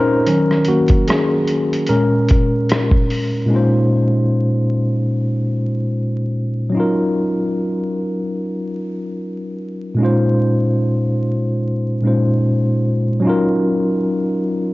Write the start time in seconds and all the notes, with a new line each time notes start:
Already playing: C#4 D#4 F4 A#4 C5 C#5
0.26 D#3 F#3 C#4, closed hi-hat
0.51 cross-stick
0.65 F#4, closed hi-hat
0.69 A#3
0.88 kick, closed hi-hat
1.08 C#4 G#4, cross-stick, closed hi-hat
1.47 closed hi-hat
1.73 closed hi-hat
1.86 A#2 G#3 C#4 A#4, closed hi-hat
2.28 kick, closed hi-hat
2.69 cross-stick, closed hi-hat
2.91 kick
3.10 open hi-hat
3.46 A#2 G#3 C#4
3.52 D#4 F4
3.56 C5
6.70 F#3 C#4
6.75 D#4 F4
6.80 A#4
9.95 A#2 G#3 C#4
10.01 D#4 F4
10.05 C5
12.02 A#2 G#3 C#4 D#4
12.06 F4 C5
13.20 F#3 C#4
13.25 D#4 F4
13.29 A#4